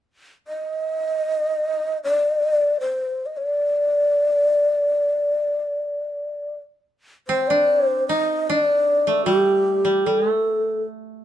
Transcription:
0.48 1.98 D#5 medium
2.04 2.78 D5 medium
2.81 3.28 C5 medium
3.26 3.39 D#5 soft
3.37 6.55 D5 medium
7.28 9.89 C4 medium
7.28 7.49 C5 medium
7.48 8.15 D4 medium
7.48 7.87 D5 medium
7.87 8.07 C5 medium
8.09 8.55 D#4 medium
8.09 8.49 D#5 medium
8.48 10.92 D4 medium
8.48 9.25 D5 medium
9.07 10.06 A3 medium
9.25 9.84 G3 medium
9.25 10.08 G4 medium
9.85 10.06 G3 soft
10.06 10.28 G3 soft
10.06 10.82 A4 medium
10.28 11.25 A3 soft

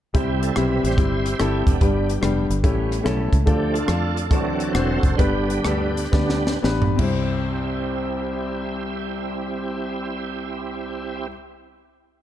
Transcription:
0.14 0.50 C2 medium
0.14 0.80 C3 medium
0.14 0.44 G3 medium
0.14 0.85 G3 soft
0.14 0.45 C4 medium
0.14 0.85 C4 medium
0.14 0.84 E4 medium
0.14 0.45 E4 medium
0.14 0.45 G4 medium
0.14 0.41 G4 medium
0.14 kick loud
0.14 closed hi-hat medium
0.43 0.53 A4 medium
0.43 closed hi-hat medium
0.54 0.80 B1 medium
0.54 0.86 G3 medium
0.54 0.87 C4 medium
0.54 0.87 E4 medium
0.54 0.87 G4 medium
0.54 0.57 C5 medium
0.54 cross-stick medium
0.54 closed hi-hat medium
0.58 0.86 B4 medium
0.84 0.96 A1 medium
0.84 0.98 G3 soft
0.84 0.98 C4 soft
0.84 1.64 E4 medium
0.84 1.64 G4 medium
0.84 1.37 C5 loud
0.84 closed hi-hat medium
0.91 cross-stick soft
0.98 1.33 G1 medium
0.98 1.28 G3 medium
0.98 1.28 C4 medium
0.98 1.28 E4 medium
0.98 1.29 G4 medium
0.98 kick loud
0.98 closed hi-hat medium
1.26 cross-stick soft
1.26 closed hi-hat medium
1.39 1.63 G1 medium
1.39 1.69 G3 medium
1.39 1.69 C4 medium
1.39 1.70 E4 medium
1.39 1.70 A4 medium
1.39 cross-stick medium
1.39 closed hi-hat medium
1.67 1.79 F1 medium
1.67 1.81 B3 medium
1.67 1.81 D4 medium
1.67 2.47 G4 medium
1.67 kick medium
1.67 closed hi-hat medium
1.81 2.17 G1 medium
1.81 2.46 G2 medium
1.81 2.11 G3 medium
1.81 2.13 G3 soft
1.81 2.11 B3 medium
1.81 2.13 B3 soft
1.81 2.12 D4 medium
1.81 2.13 D4 soft
1.81 2.12 G4 medium
1.81 kick loud
1.81 closed hi-hat medium
2.09 closed hi-hat medium
2.21 2.46 F1 medium
2.21 2.52 G3 medium
2.21 2.53 B3 medium
2.21 2.53 D4 medium
2.21 2.53 G4 medium
2.21 cross-stick medium
2.21 closed hi-hat medium
2.50 2.64 G1 medium
2.50 closed hi-hat medium
2.64 2.99 A1 medium
2.64 3.29 A2 medium
2.64 3.30 G3 soft
2.64 2.94 A3 medium
2.64 3.30 B3 soft
2.64 2.94 C#4 medium
2.64 3.31 C#4 soft
2.64 2.94 E4 medium
2.64 2.95 G4 medium
2.64 kick loud
2.64 closed hi-hat medium
2.92 cross-stick soft
2.92 closed hi-hat medium
3.04 3.29 B1 medium
3.04 3.35 A3 medium
3.04 3.35 C#4 medium
3.04 3.35 E4 medium
3.04 3.36 A4 medium
3.04 cross-stick medium
3.04 closed hi-hat medium
3.33 3.45 C#2 medium
3.33 kick medium
3.33 closed hi-hat medium
3.46 3.83 D2 medium
3.46 4.12 D3 medium
3.46 3.79 F3 soft
3.46 3.77 A3 medium
3.46 3.79 A3 soft
3.46 3.77 D4 medium
3.46 3.73 D4 medium
3.46 3.77 F4 medium
3.46 3.75 G4 medium
3.46 3.77 A4 medium
3.46 kick medium
3.46 closed hi-hat medium
3.73 4.27 D4 medium
3.73 4.27 F4 medium
3.73 4.31 A4 medium
3.73 closed hi-hat medium
3.88 4.31 F2 medium
3.88 4.19 A3 medium
3.88 4.19 D4 medium
3.88 4.19 F4 medium
3.88 4.20 A4 medium
3.88 cross-stick medium
3.88 closed hi-hat medium
4.17 closed hi-hat medium
4.30 4.76 D2 medium
4.30 4.99 D3 medium
4.30 5.00 E3 soft
4.30 5.00 F#3 soft
4.30 4.62 C4 medium
4.30 5.00 C4 soft
4.30 4.62 D4 medium
4.30 4.62 F#4 medium
4.30 4.73 F#4 medium
4.30 4.62 A4 medium
4.30 4.73 A4 medium
4.30 4.72 D5 medium
4.30 kick loud
4.30 closed hi-hat medium
4.60 closed hi-hat medium
4.73 4.99 E1 medium
4.73 5.06 C4 medium
4.73 5.06 D4 medium
4.73 5.15 F#4 medium
4.73 5.07 F#4 medium
4.73 5.16 A4 medium
4.73 5.20 C5 medium
4.73 5.07 C5 medium
4.73 cross-stick loud
4.73 closed hi-hat medium
5.03 5.16 F#1 medium
5.03 kick medium
5.03 closed hi-hat medium
5.16 5.58 G1 medium
5.16 5.93 G2 medium
5.16 5.91 D3 soft
5.16 5.92 G3 soft
5.16 5.92 B3 medium
5.16 5.52 B3 medium
5.16 6.59 D4 medium
5.16 5.52 D4 medium
5.16 6.59 G4 medium
5.16 5.52 G4 medium
5.16 6.59 B4 medium
5.16 5.53 B4 medium
5.16 kick loud
5.16 closed hi-hat medium
5.50 closed hi-hat medium
5.65 6.06 D2 medium
5.65 6.00 B3 medium
5.65 6.00 D4 medium
5.65 6.00 G4 medium
5.65 6.00 A4 medium
5.65 cross-stick loud
5.65 closed hi-hat medium
5.97 closed hi-hat medium
6.05 cross-stick soft
6.12 6.56 D2 medium
6.12 6.43 D3 soft
6.12 6.44 G3 soft
6.12 6.49 B3 medium
6.12 6.44 B3 soft
6.12 6.49 D4 medium
6.12 6.50 G4 medium
6.12 6.50 D5 medium
6.12 kick loud
6.12 snare soft
6.29 snare soft
6.47 snare medium
6.62 6.94 A1 medium
6.62 6.98 B3 medium
6.62 6.99 D4 medium
6.62 6.99 G4 medium
6.62 6.99 B4 medium
6.62 snare medium
6.82 floor tom medium
6.96 11.26 C2 medium
6.96 11.27 C2 medium
6.96 11.23 C4 medium
6.96 11.27 C4 medium
6.96 11.26 E4 medium
6.96 11.27 E4 medium
6.96 kick medium
6.96 crash medium
7.01 11.28 G4 medium
7.01 11.30 C5 medium

